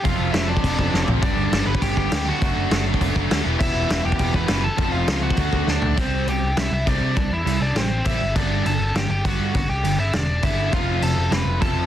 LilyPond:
<<
  \new Staff \with { instrumentName = "Lead electric guitar" } { \time 4/4 \key g \major \tempo 4 = 202 <f' f''>4 <e' e''>8 <d' d''>2 r8 | <d' d''>4. <b' b''>8 <g' g''>8 <g' g''>4 <fis' fis''>8~ | <fis' fis''>4. r2 r8 | <e' e''>4. <g' g''>8 <g' g''>8 <b' b''>4 <a' a''>8~ |
<a' a''>8 <f' f''>4 <fis' fis''>4. <d' d''>4 | <c' c''>4 <g' g''>4 <e' e''>8 <e' e''>8 <d' d''>4 | <d' d''>8 <e' e''>4 <d' d''>8 <c' c''>4 <e' e''>4 | <d' d''>4 <a' a''>4 <g' g''>8 <g' g''>8 <fis' fis''>4 |
<fis' fis''>8 <g' g''>4 <e' e''>8 <d' d''>4 <e' e''>4 | <f' f''>4 <a' a''>4 <b' b''>4 <a' a''>4 | }
  \new Staff \with { instrumentName = "Overdriven electric guitar" } { \time 4/4 \key g \major <f c' f' a'>2.~ <f c' f' a'>8 <f c' f' a'>8 | <g b d' g'>2.~ <g b d' g'>8 <g b d' g'>8 | <fis a d' fis'>2.~ <fis a d' fis'>8 <e b e' g'>8~ | <e b e' g'>2. <e b e' g'>8 r8 |
<f a c' f'>2 <d a d' fis'>2 | r1 | r1 | r1 |
r1 | <f a c' f'>1 | }
  \new Staff \with { instrumentName = "Distorted electric guitar" } { \clef bass \time 4/4 \key g \major <f, c f>2.~ <f, c f>8 <f, c f>8 | <g, d g>2.~ <g, d g>8 <g, d g>8 | <d a d'>2.~ <d a d'>8 <e, b, e>8~ | <e, b, e>2. <e, b, e>8 r8 |
<f, c f>2 <d a d'>2 | <c g c'>4 <c g>8 r8 <c g>8 r8 <c g c'>4 | <c g>8 r8 <c g>8 r8 <c g>8 r8 <c g c'>8 r8 | <g, d g>4 <g, d>8 r8 <g, d>8 r8 <g, d g>4 |
<g, d>8 r8 <g, d>8 r8 <g, d>8 r8 <g, d g>4 | <f, c f>4 <f, c>8 r8 <f, c>8 r8 <f, c f>4 | }
  \new Staff \with { instrumentName = "Distorted electric guitar" } { \clef bass \time 4/4 \key g \major <f, c f>2.~ <f, c f>8 <f, c f>8 | <g, d g>2.~ <g, d g>8 <g, d g>8 | <d a d'>2.~ <d a d'>8 <e, b, e>8~ | <e, b, e>2. <e, b, e>8 r8 |
<f, c f>2 <d a d'>2 | <c g c'>4 <c g>8 r8 <c g>8 r8 <c g c'>4 | <c g>8 r8 <c g>8 r8 <c g>8 r8 <c g c'>8 r8 | <g, d g>4 <g, d>8 r8 <g, d>8 r8 <g, d g>4 |
<g, d>8 r8 <g, d>8 r8 <g, d>8 r8 <g, d g>4 | <f, c f>4 <f, c>8 r8 <f, c>8 r8 <f, c f>4 | }
  \new Staff \with { instrumentName = "Picked electric bass" } { \clef bass \time 4/4 \key g \major f,,8 f,,8 f,,4 f,,8 f,,8 f,,8 a,,8 | g,,8 g,,8 g,,8 g,,8 g,,8 g,,8 d,4 | fis,,8 fis,,8 fis,,4 fis,,8 fis,,8 d,8 e,,8 | e,,8 e,,8 e,,8 e,,8 e,,8 e,,8 fis,,4 |
f,,8 f,,8 cis,4 d,8 d,8 d,8 d,8 | c,4 c,8 c,8 r8 c,8 c,8 c8 | c,8 e,8 c,8 c,8 a,,4 a,,8 g,,8 | g,,4 g,,8 g,,8 r8 g,,8 r8 g,8 |
g,,8 c,8 g,,8 g,,8 e,,4 g,,4 | f,,4 f,,8 f,,8 f,,8 f,,8 r8 f,8 | }
  \new DrumStaff \with { instrumentName = "Drums" } \drummode { \time 4/4 <cymc bd>4 <cymc sn>8. bd16 <cymc bd>8 bd8 sn8 tomfh8 | <cymc bd>4 <cymc sn>8. bd16 <cymc bd>8 bd8 <cymc sn>4 | <cymc bd>4 <cymc sn>8. bd16 <cymc bd>8 bd8 <cymc sn>4 | <cymc bd>4 <cymc sn>8. bd16 <cymc bd>8 bd8 <cymc sn>4 |
<cymc bd>4 <cymc sn>8. bd16 <cymc bd>8 bd8 sn8 tomfh8 | <cymc bd>4 cymc4 <cymc sn>4 <cymc bd>4 | <cymc bd>4 cymc4 <cymc sn>4 <cymc bd>4 | <cymc bd>4 cymc4 <cymc sn>4 <cymc bd>4 |
<cymc bd>4 cymc4 <cymc sn>4 <cymc bd>4 | <cymc bd>4 cymc4 <cymc sn>4 <cymc bd>4 | }
>>